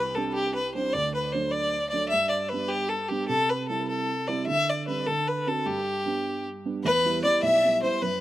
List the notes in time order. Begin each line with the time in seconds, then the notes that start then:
Already playing: C2 B4
0.15 G3 C4 D4 A4
0.34 G4
0.55 B4
0.74 G3 C4 D4 C5
0.93 D2 D5
1.14 B4
1.32 F#3 A3 D4 C5
1.51 D5
1.89 F#3 A3 D4 D5
2.08 G2 E5
2.30 D5
2.48 B4
2.53 G3 B3 D4
2.68 G4
2.89 A4
3.09 G3 B3 D4 G4
3.28 C3 A4
3.49 B4
3.69 G3 C4 E4 A4
3.88 A4
4.28 G3 C4 E4 D5
4.46 D3 E5
4.69 D5
4.87 G3 C4 D4 B4
5.06 D3 A4
5.27 B4
5.47 C4 D4 F#4 A4
5.65 G2 G4
6.06 G3 B3 D4
6.66 G3 B3 D4
6.83 E2 B4
7.05 G3 B3 E4
7.23 G3 B3 E4 D5
7.42 B1 E5
7.65 G3 B3 E4
7.82 G3 B3 E4 C5
8.02 F#2 B4